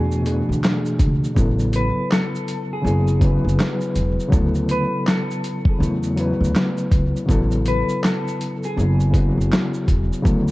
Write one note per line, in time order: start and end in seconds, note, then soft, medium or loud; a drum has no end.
0.00 0.41 E2 loud
0.00 0.20 B2 medium
0.00 0.21 E3 medium
0.00 0.21 A3 medium
0.00 0.22 D4 medium
0.00 0.23 F#4 medium
0.00 0.60 G#4 medium
0.12 shaker soft
0.22 1.24 B2 medium
0.22 1.24 E3 medium
0.22 1.25 A3 medium
0.22 1.26 D4 medium
0.22 closed hi-hat medium
0.22 shaker soft
0.27 1.26 G#4 medium
0.49 0.61 D2 medium
0.49 shaker soft
0.64 snare loud
0.64 clap medium
0.64 shaker medium
0.85 shaker soft
0.99 1.20 C#2 medium
0.99 kick medium
0.99 closed hi-hat medium
0.99 shaker soft
1.24 shaker soft
1.35 1.89 A1 loud
1.35 2.69 C#3 medium
1.35 2.69 F#3 medium
1.35 2.70 B3 medium
1.35 2.71 E4 medium
1.35 kick loud
1.35 shaker medium
1.40 2.71 A4 medium
1.59 shaker soft
1.73 2.08 B4 medium
1.73 closed hi-hat medium
1.73 shaker soft
2.12 2.68 A4 medium
2.12 snare loud
2.12 clap medium
2.12 shaker medium
2.35 shaker soft
2.48 closed hi-hat medium
2.48 shaker soft
2.73 3.56 G#4 medium
2.82 3.37 F#1 loud
2.82 3.17 C#3 medium
2.82 3.17 F#3 medium
2.82 3.18 B3 medium
2.82 3.18 E4 medium
2.87 3.19 G#4 medium
2.87 shaker soft
3.07 shaker soft
3.19 4.21 C#3 medium
3.19 4.21 F#3 medium
3.19 4.22 B3 medium
3.19 4.23 E4 medium
3.19 kick medium
3.19 closed hi-hat medium
3.19 shaker soft
3.25 4.23 B4 medium
3.45 3.57 F#1 medium
3.45 shaker soft
3.60 snare loud
3.60 clap medium
3.60 shaker medium
3.81 shaker soft
3.96 4.16 E1 medium
3.96 closed hi-hat medium
3.96 shaker soft
4.20 shaker soft
4.29 4.85 D2 loud
4.29 5.64 C#3 medium
4.29 5.65 F#3 medium
4.29 5.65 B3 medium
4.29 5.66 E4 medium
4.29 kick loud
4.33 5.67 A4 loud
4.33 shaker medium
4.55 shaker soft
4.69 5.04 B4 medium
4.69 closed hi-hat medium
4.69 shaker soft
5.07 5.69 A4 medium
5.07 snare loud
5.07 clap loud
5.07 shaker medium
5.31 shaker soft
5.44 closed hi-hat medium
5.44 shaker soft
5.65 6.52 G#4 medium
5.65 kick loud
5.79 6.33 E2 medium
5.79 6.13 C#3 medium
5.79 6.14 F#3 medium
5.79 6.14 B3 medium
5.79 6.15 E4 medium
5.79 shaker medium
5.84 6.16 A3 medium
6.03 shaker soft
6.15 7.17 C#3 medium
6.15 7.17 F#3 medium
6.15 7.18 B3 medium
6.15 7.19 E4 medium
6.15 closed hi-hat medium
6.15 shaker soft
6.20 7.19 B4 medium
6.41 6.53 D2 medium
6.41 shaker soft
6.55 snare loud
6.55 clap medium
6.55 shaker medium
6.77 shaker soft
6.92 7.12 C#2 medium
6.92 kick medium
6.92 closed hi-hat medium
6.92 shaker soft
7.16 shaker soft
7.25 7.81 A1 loud
7.25 8.60 C#3 medium
7.25 8.61 F#3 medium
7.25 8.62 B3 medium
7.25 8.62 E4 medium
7.25 kick loud
7.30 8.63 A4 loud
7.30 shaker medium
7.51 shaker soft
7.66 8.00 B4 medium
7.66 closed hi-hat medium
7.66 shaker soft
7.89 shaker medium
8.04 8.60 A4 medium
8.04 snare loud
8.04 clap loud
8.04 shaker medium
8.28 shaker soft
8.41 closed hi-hat medium
8.41 shaker soft
8.63 9.48 G#4 medium
8.63 shaker soft
8.76 9.29 F#1 loud
8.76 9.10 C#3 medium
8.76 9.10 F#3 medium
8.76 9.11 B3 medium
8.76 9.12 E4 medium
8.76 shaker medium
8.81 9.12 G#4 medium
9.00 shaker soft
9.11 10.13 C#3 medium
9.11 10.13 F#3 medium
9.11 10.14 B3 medium
9.11 10.15 E4 medium
9.11 kick medium
9.11 closed hi-hat medium
9.11 shaker soft
9.16 10.15 F#4 medium
9.38 9.49 F#1 medium
9.38 shaker soft
9.52 snare loud
9.52 clap medium
9.52 shaker medium
9.74 shaker soft
9.88 10.08 E1 medium
9.88 kick medium
9.88 closed hi-hat medium
9.88 shaker soft
10.13 shaker soft
10.22 10.52 D2 loud
10.22 10.52 C#3 medium
10.22 10.52 F#3 medium
10.22 10.52 B3 medium
10.22 10.52 E4 medium
10.22 kick loud
10.22 shaker medium
10.27 10.52 A4 medium
10.48 shaker soft